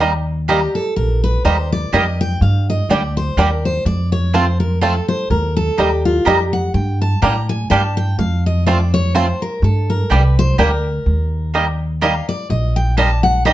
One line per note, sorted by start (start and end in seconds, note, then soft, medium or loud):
0.00 0.65 D#2 medium
0.00 0.12 G3 medium
0.00 0.10 A#3 medium
0.00 0.03 D#4 medium
0.00 0.11 G4 medium
0.00 0.11 D#5 medium
0.00 0.11 A#5 medium
0.48 0.61 G3 medium
0.48 0.59 A#3 medium
0.48 0.51 D#4 medium
0.48 0.75 G4 medium
0.48 0.59 G4 loud
0.48 0.59 D#5 loud
0.48 0.59 A#5 loud
0.75 0.96 A4 medium
0.96 1.35 A#1 medium
0.96 1.23 A#4 medium
1.24 1.44 B4 medium
1.45 1.86 D#2 medium
1.45 1.57 G3 medium
1.45 1.55 A#3 medium
1.45 1.47 D#4 medium
1.45 1.55 G4 medium
1.45 1.71 C5 medium
1.45 1.55 D#5 medium
1.45 1.55 A#5 medium
1.72 1.93 D5 loud
1.93 2.34 F2 medium
1.93 2.05 G3 medium
1.93 2.03 A#3 loud
1.93 1.96 D#4 medium
1.93 2.03 G4 loud
1.93 2.03 D#5 loud
1.93 2.20 D#5 medium
1.93 2.04 A#5 loud
2.21 2.41 G5 loud
2.41 2.79 G2 medium
2.41 2.68 F5 medium
2.70 2.90 D#5 medium
2.89 3.30 D2 medium
2.89 3.02 G3 medium
2.89 3.00 A#3 medium
2.89 2.93 D4 medium
2.89 3.00 G4 medium
2.89 3.16 D5 medium
2.89 3.00 D5 medium
2.89 3.00 G5 medium
3.17 3.38 C5 loud
3.37 3.78 D#2 medium
3.37 3.50 G3 medium
3.37 3.48 A#3 medium
3.37 3.41 D4 medium
3.37 3.48 G4 loud
3.37 3.64 A#4 medium
3.37 3.48 D5 loud
3.37 3.48 G5 medium
3.65 3.86 C5 medium
3.85 4.99 F2 medium
3.85 4.12 D5 medium
4.12 4.33 C#5 medium
4.34 4.46 A3 medium
4.34 4.44 C4 medium
4.34 4.46 C4 medium
4.34 4.44 F4 medium
4.34 4.46 F4 medium
4.34 4.44 C5 medium
4.34 4.59 C5 medium
4.34 4.44 A5 loud
4.60 4.81 A#4 loud
4.81 4.94 A3 medium
4.81 4.92 C4 medium
4.81 4.94 C4 medium
4.81 4.92 F4 loud
4.81 4.94 F4 medium
4.81 5.08 A4 medium
4.81 4.92 C5 medium
4.81 4.92 A5 loud
5.08 5.30 C5 loud
5.30 5.68 D#2 loud
5.30 5.56 A#4 medium
5.57 5.78 A4 medium
5.78 6.19 D#2 medium
5.78 5.91 G3 medium
5.78 5.88 A#3 medium
5.78 5.82 D#4 medium
5.78 5.88 G4 medium
5.78 6.04 G4 medium
5.78 5.88 D#5 medium
5.78 5.89 A#5 medium
6.05 6.26 F4 medium
6.25 6.67 F2 medium
6.25 6.39 G3 medium
6.25 6.36 A#3 loud
6.25 6.30 D#4 medium
6.25 6.36 G4 loud
6.25 6.43 G4 medium
6.25 6.36 D#5 medium
6.25 6.36 A#5 loud
6.53 6.74 F#5 loud
6.74 7.12 G2 medium
6.74 7.00 G5 medium
7.01 7.22 A5 medium
7.22 7.63 A2 medium
7.22 7.35 G3 medium
7.22 7.32 A#3 medium
7.22 7.26 D4 medium
7.22 7.32 G4 medium
7.22 7.33 D5 medium
7.22 7.33 G5 medium
7.22 7.48 A#5 loud
7.49 7.69 G#5 loud
7.70 8.12 G2 medium
7.70 7.83 G3 medium
7.70 7.81 A#3 loud
7.70 7.73 D4 medium
7.70 7.81 G4 medium
7.70 7.81 D5 loud
7.70 7.81 G5 loud
7.70 7.96 A5 loud
7.97 8.18 G5 medium
8.18 9.31 F2 loud
8.18 8.44 F5 medium
8.46 8.66 D#5 loud
8.66 8.79 A3 medium
8.66 8.77 C4 medium
8.66 8.79 C4 medium
8.66 8.77 F4 medium
8.66 8.79 F4 medium
8.66 8.77 C5 loud
8.66 8.92 D5 medium
8.66 8.77 A5 medium
8.94 9.14 C#5 loud
9.15 9.27 A3 medium
9.15 9.25 C4 loud
9.15 9.27 C4 medium
9.15 9.25 F4 medium
9.15 9.27 F4 medium
9.15 9.25 C5 loud
9.15 9.41 C5 medium
9.15 9.25 A5 loud
9.42 9.62 A#4 medium
9.62 10.00 G2 loud
9.62 9.89 A4 medium
9.90 10.10 A#4 medium
10.10 10.51 C2 medium
10.10 10.23 G3 medium
10.10 10.20 A#3 medium
10.10 10.14 D4 medium
10.10 10.20 G4 medium
10.10 10.37 B4 medium
10.10 10.21 D5 medium
10.10 10.21 G5 medium
10.39 10.58 C5 loud
10.58 10.99 D2 medium
10.58 10.70 G3 medium
10.58 10.68 A#3 medium
10.58 10.61 D4 medium
10.58 10.69 G4 loud
10.58 11.51 A#4 medium
10.58 10.69 D5 loud
10.58 10.69 G5 loud
11.06 12.19 D#2 medium
11.54 11.66 G3 medium
11.54 11.64 A#3 medium
11.54 11.57 D#4 medium
11.54 11.64 G4 medium
11.54 11.65 D#5 medium
11.54 11.65 A#5 medium
12.01 12.14 G3 medium
12.01 12.12 A#3 medium
12.01 12.05 D#4 medium
12.01 12.12 G4 medium
12.01 12.12 D#5 medium
12.01 12.28 F5 medium
12.01 12.12 A#5 loud
12.29 12.50 D5 medium
12.50 13.53 A#1 medium
12.50 12.76 D#5 medium
12.76 12.97 G5 loud
12.97 13.10 G3 medium
12.97 13.08 A#3 medium
12.97 13.01 D#4 medium
12.97 13.08 G4 medium
12.97 13.08 D#5 medium
12.97 13.23 A5 loud
12.97 13.08 A#5 medium
13.23 13.45 F#5 loud
13.45 13.53 G3 medium
13.45 13.53 A#3 loud
13.45 13.49 D#4 medium
13.45 13.53 G4 loud
13.45 13.53 D#5 loud
13.45 13.53 G5 loud
13.45 13.53 A#5 loud